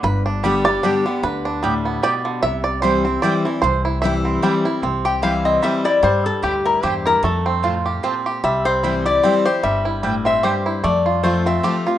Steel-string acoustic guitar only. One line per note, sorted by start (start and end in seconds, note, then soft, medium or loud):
0.04 0.80 G2 medium
0.44 0.65 D3 medium
0.44 0.65 G3 medium
0.44 0.65 B3 loud
0.44 0.65 G4 loud
0.66 0.83 B3 soft
0.66 0.83 G4 medium
0.83 1.05 D3 medium
0.83 1.05 G3 medium
0.83 1.05 B3 medium
0.83 1.05 G4 loud
1.06 1.24 B3 medium
1.06 1.23 G4 medium
1.23 2.00 D3 medium
1.64 2.02 A2 medium
2.04 2.42 B2 medium
2.43 3.19 C3 medium
2.83 3.04 E3 loud
2.83 3.05 G3 loud
2.83 3.05 C4 medium
2.83 3.04 E4 medium
3.05 3.22 E4 medium
3.23 3.44 E3 medium
3.23 3.45 G3 loud
3.23 3.45 C4 medium
3.23 3.44 E4 loud
3.45 3.63 C4 medium
3.45 3.62 E4 medium
3.64 4.40 C3 medium
4.03 4.41 E3 medium
4.03 4.42 G3 medium
4.03 4.42 C4 loud
4.03 4.42 E4 loud
4.43 4.64 E3 medium
4.43 4.64 G3 medium
4.43 4.65 C4 loud
4.43 4.64 E4 loud
4.65 4.83 C4 medium
4.65 4.82 E4 medium
4.83 5.60 C3 medium
5.23 5.61 E3 medium
5.23 5.61 G3 medium
5.23 5.62 C4 medium
5.23 5.62 E4 medium
5.63 5.84 E3 medium
5.63 5.85 G3 loud
5.63 5.85 C4 loud
5.63 5.83 E4 loud
5.84 6.03 C4 soft
5.84 6.02 E4 medium
6.03 6.79 G2 medium
6.43 6.81 A2 medium
6.83 7.22 G2 medium
7.23 8.00 F2 medium
7.64 8.02 A2 medium
8.04 8.42 A#2 medium
8.44 9.20 C3 medium
8.84 9.05 E3 medium
8.84 9.05 G3 medium
8.84 9.05 C4 medium
8.84 9.04 E4 medium
9.06 9.24 C4 soft
9.06 9.23 E4 medium
9.24 9.45 E3 medium
9.24 9.45 G3 medium
9.24 9.46 C4 medium
9.24 9.44 E4 loud
9.45 9.64 C4 soft
9.45 9.63 E4 medium
9.63 10.40 G2 medium
10.03 10.42 A2 medium
10.43 10.82 G2 medium
10.84 11.61 F2 medium
11.24 11.45 F3 medium
11.24 11.46 A3 medium
11.24 11.46 C4 medium
11.24 11.45 F4 medium
11.46 11.64 C4 soft
11.46 11.63 F4 medium
11.63 11.85 F3 medium
11.63 11.86 A3 loud
11.63 11.86 C4 medium
11.63 11.85 F4 medium
11.86 11.98 C4 medium
11.86 11.98 F4 medium